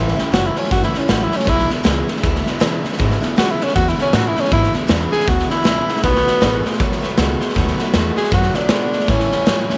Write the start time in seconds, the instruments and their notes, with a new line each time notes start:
Already playing: upright bass A1, clean electric guitar A2 E3, steel-string acoustic guitar A2 E3 G3 C#4 E4
0.08 snare
0.15 clean electric guitar A2 E3, steel-string acoustic guitar G3 C#4 E4, snare
0.32 upright bass F#1, steel-string acoustic guitar A2 E3 G3 C#4 E4, clean electric guitar A2 F#3, tenor saxophone F#4, snare, hi-hat pedal
0.46 tenor saxophone E4
0.55 clean electric guitar A2 F#3, steel-string acoustic guitar G3 C#4 E4, tenor saxophone C#4, muted upright bass stroke, snare
0.63 snare
0.71 upright bass G1, clean electric guitar A2 E3, steel-string acoustic guitar E3 G3 C#4 E4, tenor saxophone F#4, kick, snare
0.83 tenor saxophone E4, snare
0.92 clean electric guitar A2 E3, steel-string acoustic guitar G3 C#4 E4, muted upright bass stroke, snare
0.98 tenor saxophone C#4
1.08 upright bass A1, steel-string acoustic guitar A2 E3 G3 C#4 E4, clean electric guitar A2 F#3, tenor saxophone F#4, snare, hi-hat pedal
1.23 tenor saxophone E4
1.29 clean electric guitar A2 F#3, steel-string acoustic guitar G3 C#4 E4, muted upright bass stroke, snare
1.36 tenor saxophone C#4, snare
1.44 upright bass B1, steel-string acoustic guitar E2 B2 E3 G#3 D4 E4, clean electric guitar E2, kick, snare
1.48 clean electric guitar B2, tenor saxophone E4
1.59 snare
1.67 clean electric guitar E2 B2, steel-string acoustic guitar E3 G#3 D4 E4, muted upright bass stroke, snare
1.83 upright bass C#2, steel-string acoustic guitar E2 B2 E3 G#3 D4 E4, clean electric guitar E2 C#3, snare, hi-hat pedal
2.07 clean electric guitar E2 C#3, steel-string acoustic guitar E3 G#3 D4 E4, muted upright bass stroke, snare
2.16 snare
2.23 upright bass D2, clean electric guitar E2 B2, steel-string acoustic guitar E3 G#3 D4 E4, kick, snare
2.35 snare
2.44 clean electric guitar E2 B2, steel-string acoustic guitar E3 G#3 D4 E4, snare
2.59 steel-string acoustic guitar E2 B2 E3 G#3 D4 E4, upright bass E2, clean electric guitar E2, snare, hi-hat pedal
2.63 clean electric guitar C#3
2.82 clean electric guitar E2 C#3, steel-string acoustic guitar E3 G#3 D4 E4, muted upright bass stroke, snare
2.92 snare
2.97 steel-string acoustic guitar E2 B2 E3 G#3 D4 E4, clean electric guitar E2 B2, upright bass G#2, kick, snare
3.11 snare
3.20 clean electric guitar E2 B2, steel-string acoustic guitar E3 G#3 D4 E4, muted upright bass stroke, snare
3.36 steel-string acoustic guitar E2 B2 E3 G#3 D4 E4, clean electric guitar E2 C#3, upright bass F#2, tenor saxophone F#4, snare, hi-hat pedal
3.51 tenor saxophone E4
3.59 clean electric guitar E2 C#3, steel-string acoustic guitar E3 G#3 D4 E4, tenor saxophone C#4, muted upright bass stroke, snare
3.68 snare
3.74 upright bass E2, clean electric guitar E2 B2, steel-string acoustic guitar E3 G#3 D4 E4, tenor saxophone F#4, kick, snare
3.87 tenor saxophone E4, snare
3.97 clean electric guitar E2 B2, steel-string acoustic guitar E3 G#3 D4 E4, muted upright bass stroke, snare
4.02 tenor saxophone C#4
4.13 steel-string acoustic guitar E2 B2 E3 G#3 D4 E4, clean electric guitar E2 C#3, upright bass A2, tenor saxophone F#4, snare, hi-hat pedal
4.28 tenor saxophone E4
4.36 clean electric guitar E2 C#3, steel-string acoustic guitar E3 G#3 D4 E4, muted upright bass stroke, snare
4.40 tenor saxophone C#4
4.44 snare
4.51 steel-string acoustic guitar E2 B2 E3 G#3 D4 E4, clean electric guitar E2 B2, upright bass G#2, tenor saxophone E4, kick, snare
4.63 snare
4.73 clean electric guitar E2 B2, steel-string acoustic guitar E3 G#3 D4 E4, muted upright bass stroke, snare
4.87 steel-string acoustic guitar E2 B2 E3 G#3 D4 E4, upright bass E2, clean electric guitar E2 C#3, snare, hi-hat pedal
5.10 clean electric guitar E2 C#3, steel-string acoustic guitar E3 G#3 D4 E4, tenor saxophone G#4, muted upright bass stroke, snare
5.20 snare
5.26 upright bass D2, clean electric guitar E2 B2, steel-string acoustic guitar E3 G#3 D4 E4, tenor saxophone F#4, kick, snare
5.39 snare
5.48 clean electric guitar E2 B2, steel-string acoustic guitar E3 G#3 D4 E4, tenor saxophone E4, snare
5.63 upright bass C#2, steel-string acoustic guitar E2 B2 E3 G#3 D4 E4, clean electric guitar E2, snare, hi-hat pedal
5.67 clean electric guitar C#3
5.86 clean electric guitar E2 C#3, steel-string acoustic guitar E3 G#3 D4 E4, muted upright bass stroke, snare
5.96 snare
6.03 upright bass B1, steel-string acoustic guitar B2 D#3 A3 B3 F#4, clean electric guitar B2 F#3, tenor saxophone B3, kick, snare
6.16 snare
6.25 clean electric guitar B2 F#3, steel-string acoustic guitar A3 B3 F#4, snare
6.41 upright bass A1, steel-string acoustic guitar B2 D#3 A3 B3 F#4, clean electric guitar B2 G#3, snare, hi-hat pedal
6.63 clean electric guitar B2 G#3, steel-string acoustic guitar A3 B3 F#4, muted upright bass stroke, snare
6.73 snare
6.79 upright bass B1, clean electric guitar B2 F#3, steel-string acoustic guitar D#3 A3 B3 F#4, kick, snare
6.92 snare
7.00 clean electric guitar B2 F#3, steel-string acoustic guitar A3 B3 F#4, muted upright bass stroke, snare
7.17 upright bass C#2, steel-string acoustic guitar B2 D#3 A3 B3 F#4, clean electric guitar B2 G#3, snare, hi-hat pedal
7.39 clean electric guitar B2 G#3, steel-string acoustic guitar A3 B3 F#4, muted upright bass stroke, snare
7.49 snare
7.55 upright bass D#2, steel-string acoustic guitar B2 D#3 A3 B3 F#4, clean electric guitar B2 F#3, kick, snare
7.67 snare
7.78 clean electric guitar B2 F#3, steel-string acoustic guitar A3 B3 F#4, muted upright bass stroke, snare
7.94 upright bass E2, steel-string acoustic guitar B2 D#3 A3 B3 F#4, clean electric guitar B2 G#3, snare, hi-hat pedal
8.16 clean electric guitar B2 G#3, steel-string acoustic guitar A3 B3 F#4, tenor saxophone G#4, snare
8.24 snare
8.30 upright bass F#2, clean electric guitar B2 F#3, steel-string acoustic guitar D#3 A3 B3 F#4, tenor saxophone F#4, kick, snare
8.42 snare
8.53 clean electric guitar B2 F#3, steel-string acoustic guitar A3 B3 F#4, tenor saxophone D4, snare
8.69 upright bass G#2, steel-string acoustic guitar B2 D#3 A3 B3 F#4, clean electric guitar B2 G#3, snare, hi-hat pedal
8.91 clean electric guitar B2 G#3, steel-string acoustic guitar A3 B3 F#4, muted upright bass stroke, snare
9.00 snare
9.07 steel-string acoustic guitar A2 E3 G3 C#4 E4, upright bass A2, clean electric guitar A2 E3, tenor saxophone C#4, kick, snare
9.20 snare
9.29 clean electric guitar A2 E3, steel-string acoustic guitar G3 C#4 E4, muted upright bass stroke, snare
9.45 upright bass G#2, steel-string acoustic guitar A2 E3 G3 C#4 E4, clean electric guitar A2 F#3, snare, hi-hat pedal
9.69 clean electric guitar A2 F#3, steel-string acoustic guitar G3 C#4 E4, muted upright bass stroke, snare